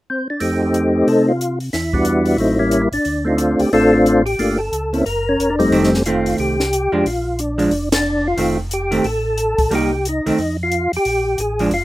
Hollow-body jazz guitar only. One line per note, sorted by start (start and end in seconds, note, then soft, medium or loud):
5.72 5.91 D#3 medium
5.72 5.91 A3 medium
5.72 5.91 C4 medium
6.06 6.56 D#3 soft
6.06 6.56 A3 medium
6.06 6.56 C4 medium
6.92 7.04 F3 medium
6.92 7.04 G#3 medium
6.92 7.04 D4 medium
7.58 7.70 F3 medium
7.58 7.70 G#3 medium
7.58 7.71 D4 medium
8.38 8.56 D#3 soft
8.38 8.57 A3 medium
8.38 8.57 C4 medium
8.91 9.03 D#3 medium
8.91 9.04 A3 medium
8.91 9.04 C4 medium
9.71 9.89 G3 medium
9.71 9.90 A#3 medium
9.71 9.91 D#4 medium
10.26 10.37 D#3 medium
10.26 10.37 A3 medium
10.26 10.38 C4 medium
11.60 11.71 F3 medium
11.60 11.71 G#3 medium
11.60 11.71 D4 medium